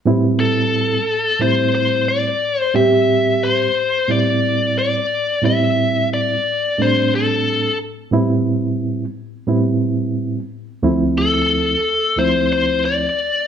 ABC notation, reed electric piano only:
X:1
M:4/4
L:1/8
Q:1/4=89
K:Am
V:1 name="Reed electric piano"
[A,,G,B,CE]3 z [A,,G,A,CE]3 z | [A,,G,B,CG]3 z [A,,G,B,CE]3 z | [A,,G,B,CE]3 z [A,,G,A,CD]3 z | [A,,G,B,CE]3 z [A,,G,B,CE]3 z |
[D,,F,A,CE]3 z [D,,F,A,CE]3 z |]